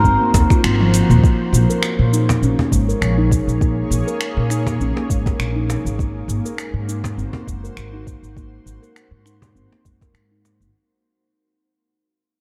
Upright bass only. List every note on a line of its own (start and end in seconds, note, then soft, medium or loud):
0.04 0.14 G#1 medium
0.34 0.44 D#2 medium
0.64 1.00 G#1 medium
1.10 1.18 D#2 medium
1.53 1.63 A#1 loud
1.99 2.43 A#2 medium
2.42 2.52 A#1 medium
2.72 2.91 G#1 medium
3.01 3.38 A#1 medium
3.47 3.82 A#1 medium
3.91 4.01 A#1 medium
4.37 4.82 A#2 medium
4.80 4.90 A#1 medium
5.10 5.29 G#1 medium
5.39 5.75 A#1 medium
5.85 6.20 G#1 medium
6.28 6.38 G#1 medium
6.74 7.19 G#2 medium
7.17 7.27 G#1 medium
7.47 7.67 F#1 medium
7.77 8.13 G#1 medium
8.23 8.58 G#1 medium
8.66 8.76 G#1 medium
9.11 9.56 G#2 medium
9.55 9.65 G#1 medium
9.85 10.15 F#1 medium
10.14 10.62 G#2 medium
10.60 10.69 G#1 medium